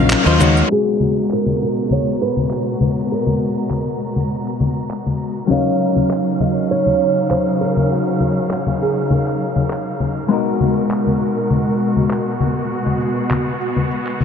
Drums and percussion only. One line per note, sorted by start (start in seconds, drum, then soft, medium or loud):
0.10 clap loud
0.10 shaker soft
0.26 shaker soft
0.40 low conga medium
0.40 shaker medium
0.57 shaker soft
0.71 shaker soft
0.87 shaker soft
1.00 low conga medium
1.00 shaker medium
1.30 clap medium
1.30 shaker soft
1.46 low conga medium
1.46 shaker soft
1.61 shaker medium
1.77 shaker soft
1.90 low conga medium
1.90 shaker soft
2.07 shaker soft
2.21 shaker medium
2.37 low conga medium
2.37 shaker soft
2.50 clap medium
2.50 shaker soft
2.80 low conga medium
2.80 shaker medium
3.26 low conga medium
3.26 shaker soft
3.41 shaker medium
3.57 shaker soft
3.70 clap medium
3.70 low conga medium
3.70 shaker soft
3.87 shaker soft
4.01 shaker medium
4.16 low conga medium
4.16 shaker soft
4.46 clap soft
4.60 low conga medium
4.60 shaker medium
4.77 shaker soft
4.90 clap medium
4.90 shaker soft
5.06 low conga medium
5.06 shaker soft
5.21 shaker medium
5.37 shaker soft
5.50 low conga medium
5.50 shaker soft
5.81 shaker medium
5.96 low conga medium
5.96 shaker soft
6.10 clap medium
6.10 shaker soft
6.27 shaker soft
6.40 low conga medium
6.40 shaker medium
6.71 shaker soft
6.86 low conga medium
6.86 shaker soft
7.01 shaker medium
7.17 shaker soft
7.30 clap medium
7.30 low conga medium
7.30 shaker soft
7.47 shaker soft
7.61 shaker medium
7.77 low conga medium
7.77 shaker soft
7.91 shaker soft
8.20 low conga medium
8.20 shaker medium
8.37 shaker soft
8.50 clap medium
8.50 shaker soft
8.66 low conga medium
8.66 shaker soft
8.81 shaker medium
8.97 shaker soft
9.10 low conga medium
9.10 shaker soft
9.26 clap soft
9.41 shaker medium
9.56 low conga medium
9.56 shaker soft
9.70 clap medium
9.70 shaker soft
9.87 shaker soft
10.00 low conga medium
10.00 shaker medium
10.17 shaker soft
10.31 shaker soft
10.47 shaker soft
10.60 low conga medium
10.60 shaker medium
10.77 shaker soft
10.90 clap medium
10.90 shaker soft
11.07 low conga medium
11.07 shaker soft
11.21 shaker medium
11.37 shaker soft
11.50 low conga medium
11.50 shaker soft
11.67 shaker soft
11.81 shaker medium
11.96 low conga medium
11.96 shaker soft
12.10 clap medium
12.10 shaker soft
12.40 low conga medium
12.40 shaker medium
12.57 shaker soft
12.71 shaker soft
12.86 low conga medium
12.86 shaker soft
13.00 shaker medium
13.17 shaker soft
13.30 clap medium
13.30 low conga medium
13.30 shaker soft
13.47 shaker soft
13.61 shaker medium
13.76 low conga medium
13.76 shaker soft
13.91 shaker soft
14.06 clap soft
14.06 shaker soft
14.20 low conga medium
14.20 shaker medium